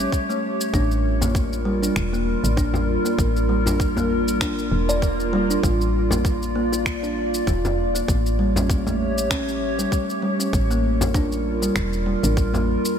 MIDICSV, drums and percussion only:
0, 0, Header, 1, 3, 480
1, 0, Start_track
1, 0, Tempo, 612245
1, 579, Time_signature, 4, 2, 24, 8
1, 10183, End_track
2, 0, Start_track
2, 0, Title_t, "Frame drum"
2, 952, Note_on_c, 9, 64, 88
2, 1030, Note_off_c, 9, 64, 0
2, 2145, Note_on_c, 9, 64, 98
2, 2224, Note_off_c, 9, 64, 0
2, 2874, Note_on_c, 9, 64, 89
2, 2952, Note_off_c, 9, 64, 0
2, 3108, Note_on_c, 9, 64, 76
2, 3186, Note_off_c, 9, 64, 0
2, 4787, Note_on_c, 9, 64, 100
2, 4866, Note_off_c, 9, 64, 0
2, 5997, Note_on_c, 9, 64, 100
2, 6075, Note_off_c, 9, 64, 0
2, 6711, Note_on_c, 9, 64, 102
2, 6790, Note_off_c, 9, 64, 0
2, 6951, Note_on_c, 9, 64, 80
2, 7029, Note_off_c, 9, 64, 0
2, 8632, Note_on_c, 9, 64, 102
2, 8711, Note_off_c, 9, 64, 0
2, 9832, Note_on_c, 9, 64, 93
2, 9910, Note_off_c, 9, 64, 0
2, 10183, End_track
3, 0, Start_track
3, 0, Title_t, "Drums"
3, 0, Note_on_c, 9, 82, 63
3, 75, Note_off_c, 9, 82, 0
3, 97, Note_on_c, 9, 36, 101
3, 104, Note_on_c, 9, 82, 55
3, 176, Note_off_c, 9, 36, 0
3, 183, Note_off_c, 9, 82, 0
3, 237, Note_on_c, 9, 82, 31
3, 315, Note_off_c, 9, 82, 0
3, 476, Note_on_c, 9, 82, 66
3, 555, Note_off_c, 9, 82, 0
3, 577, Note_on_c, 9, 36, 104
3, 583, Note_on_c, 9, 82, 52
3, 655, Note_off_c, 9, 36, 0
3, 661, Note_off_c, 9, 82, 0
3, 716, Note_on_c, 9, 82, 32
3, 795, Note_off_c, 9, 82, 0
3, 956, Note_on_c, 9, 82, 64
3, 1034, Note_off_c, 9, 82, 0
3, 1057, Note_on_c, 9, 36, 99
3, 1064, Note_on_c, 9, 82, 57
3, 1136, Note_off_c, 9, 36, 0
3, 1143, Note_off_c, 9, 82, 0
3, 1197, Note_on_c, 9, 82, 33
3, 1276, Note_off_c, 9, 82, 0
3, 1437, Note_on_c, 9, 82, 58
3, 1515, Note_off_c, 9, 82, 0
3, 1537, Note_on_c, 9, 26, 73
3, 1537, Note_on_c, 9, 36, 105
3, 1543, Note_on_c, 9, 82, 52
3, 1615, Note_off_c, 9, 26, 0
3, 1616, Note_off_c, 9, 36, 0
3, 1621, Note_off_c, 9, 82, 0
3, 1677, Note_on_c, 9, 82, 32
3, 1755, Note_off_c, 9, 82, 0
3, 1916, Note_on_c, 9, 82, 67
3, 1995, Note_off_c, 9, 82, 0
3, 2017, Note_on_c, 9, 36, 100
3, 2024, Note_on_c, 9, 82, 51
3, 2096, Note_off_c, 9, 36, 0
3, 2103, Note_off_c, 9, 82, 0
3, 2157, Note_on_c, 9, 82, 30
3, 2235, Note_off_c, 9, 82, 0
3, 2396, Note_on_c, 9, 82, 64
3, 2474, Note_off_c, 9, 82, 0
3, 2497, Note_on_c, 9, 36, 107
3, 2503, Note_on_c, 9, 82, 55
3, 2576, Note_off_c, 9, 36, 0
3, 2582, Note_off_c, 9, 82, 0
3, 2637, Note_on_c, 9, 82, 32
3, 2716, Note_off_c, 9, 82, 0
3, 2876, Note_on_c, 9, 82, 68
3, 2955, Note_off_c, 9, 82, 0
3, 2977, Note_on_c, 9, 36, 99
3, 2984, Note_on_c, 9, 82, 55
3, 3056, Note_off_c, 9, 36, 0
3, 3063, Note_off_c, 9, 82, 0
3, 3116, Note_on_c, 9, 82, 31
3, 3194, Note_off_c, 9, 82, 0
3, 3355, Note_on_c, 9, 82, 59
3, 3434, Note_off_c, 9, 82, 0
3, 3457, Note_on_c, 9, 26, 78
3, 3457, Note_on_c, 9, 36, 98
3, 3462, Note_on_c, 9, 82, 56
3, 3535, Note_off_c, 9, 26, 0
3, 3535, Note_off_c, 9, 36, 0
3, 3541, Note_off_c, 9, 82, 0
3, 3596, Note_on_c, 9, 82, 34
3, 3675, Note_off_c, 9, 82, 0
3, 3836, Note_on_c, 9, 82, 66
3, 3915, Note_off_c, 9, 82, 0
3, 3937, Note_on_c, 9, 36, 105
3, 3943, Note_on_c, 9, 82, 55
3, 4016, Note_off_c, 9, 36, 0
3, 4021, Note_off_c, 9, 82, 0
3, 4076, Note_on_c, 9, 82, 33
3, 4155, Note_off_c, 9, 82, 0
3, 4317, Note_on_c, 9, 82, 65
3, 4395, Note_off_c, 9, 82, 0
3, 4417, Note_on_c, 9, 36, 108
3, 4423, Note_on_c, 9, 82, 56
3, 4496, Note_off_c, 9, 36, 0
3, 4502, Note_off_c, 9, 82, 0
3, 4557, Note_on_c, 9, 82, 35
3, 4635, Note_off_c, 9, 82, 0
3, 4797, Note_on_c, 9, 82, 68
3, 4875, Note_off_c, 9, 82, 0
3, 4897, Note_on_c, 9, 36, 107
3, 4904, Note_on_c, 9, 82, 53
3, 4976, Note_off_c, 9, 36, 0
3, 4982, Note_off_c, 9, 82, 0
3, 5037, Note_on_c, 9, 82, 34
3, 5116, Note_off_c, 9, 82, 0
3, 5277, Note_on_c, 9, 82, 64
3, 5355, Note_off_c, 9, 82, 0
3, 5378, Note_on_c, 9, 26, 82
3, 5378, Note_on_c, 9, 36, 106
3, 5383, Note_on_c, 9, 82, 56
3, 5456, Note_off_c, 9, 26, 0
3, 5456, Note_off_c, 9, 36, 0
3, 5462, Note_off_c, 9, 82, 0
3, 5516, Note_on_c, 9, 82, 33
3, 5595, Note_off_c, 9, 82, 0
3, 5756, Note_on_c, 9, 82, 73
3, 5835, Note_off_c, 9, 82, 0
3, 5858, Note_on_c, 9, 36, 112
3, 5863, Note_on_c, 9, 82, 58
3, 5936, Note_off_c, 9, 36, 0
3, 5941, Note_off_c, 9, 82, 0
3, 5996, Note_on_c, 9, 82, 33
3, 6075, Note_off_c, 9, 82, 0
3, 6236, Note_on_c, 9, 82, 71
3, 6314, Note_off_c, 9, 82, 0
3, 6338, Note_on_c, 9, 36, 112
3, 6343, Note_on_c, 9, 82, 54
3, 6416, Note_off_c, 9, 36, 0
3, 6422, Note_off_c, 9, 82, 0
3, 6478, Note_on_c, 9, 82, 38
3, 6556, Note_off_c, 9, 82, 0
3, 6717, Note_on_c, 9, 82, 69
3, 6796, Note_off_c, 9, 82, 0
3, 6817, Note_on_c, 9, 36, 112
3, 6823, Note_on_c, 9, 82, 58
3, 6896, Note_off_c, 9, 36, 0
3, 6902, Note_off_c, 9, 82, 0
3, 6956, Note_on_c, 9, 82, 34
3, 7034, Note_off_c, 9, 82, 0
3, 7197, Note_on_c, 9, 82, 66
3, 7275, Note_off_c, 9, 82, 0
3, 7297, Note_on_c, 9, 26, 85
3, 7297, Note_on_c, 9, 36, 102
3, 7303, Note_on_c, 9, 82, 61
3, 7375, Note_off_c, 9, 26, 0
3, 7376, Note_off_c, 9, 36, 0
3, 7381, Note_off_c, 9, 82, 0
3, 7437, Note_on_c, 9, 82, 37
3, 7515, Note_off_c, 9, 82, 0
3, 7677, Note_on_c, 9, 82, 69
3, 7755, Note_off_c, 9, 82, 0
3, 7777, Note_on_c, 9, 36, 114
3, 7783, Note_on_c, 9, 82, 57
3, 7856, Note_off_c, 9, 36, 0
3, 7861, Note_off_c, 9, 82, 0
3, 7916, Note_on_c, 9, 82, 33
3, 7995, Note_off_c, 9, 82, 0
3, 8155, Note_on_c, 9, 82, 72
3, 8234, Note_off_c, 9, 82, 0
3, 8257, Note_on_c, 9, 36, 112
3, 8263, Note_on_c, 9, 82, 58
3, 8336, Note_off_c, 9, 36, 0
3, 8341, Note_off_c, 9, 82, 0
3, 8397, Note_on_c, 9, 82, 38
3, 8475, Note_off_c, 9, 82, 0
3, 8635, Note_on_c, 9, 82, 79
3, 8714, Note_off_c, 9, 82, 0
3, 8737, Note_on_c, 9, 36, 118
3, 8743, Note_on_c, 9, 82, 59
3, 8816, Note_off_c, 9, 36, 0
3, 8822, Note_off_c, 9, 82, 0
3, 8876, Note_on_c, 9, 82, 34
3, 8954, Note_off_c, 9, 82, 0
3, 9115, Note_on_c, 9, 82, 65
3, 9193, Note_off_c, 9, 82, 0
3, 9217, Note_on_c, 9, 26, 80
3, 9218, Note_on_c, 9, 36, 114
3, 9223, Note_on_c, 9, 82, 61
3, 9295, Note_off_c, 9, 26, 0
3, 9296, Note_off_c, 9, 36, 0
3, 9301, Note_off_c, 9, 82, 0
3, 9354, Note_on_c, 9, 82, 38
3, 9433, Note_off_c, 9, 82, 0
3, 9594, Note_on_c, 9, 82, 74
3, 9673, Note_off_c, 9, 82, 0
3, 9698, Note_on_c, 9, 36, 118
3, 9703, Note_on_c, 9, 82, 56
3, 9776, Note_off_c, 9, 36, 0
3, 9781, Note_off_c, 9, 82, 0
3, 9836, Note_on_c, 9, 82, 34
3, 9914, Note_off_c, 9, 82, 0
3, 10075, Note_on_c, 9, 82, 73
3, 10154, Note_off_c, 9, 82, 0
3, 10183, End_track
0, 0, End_of_file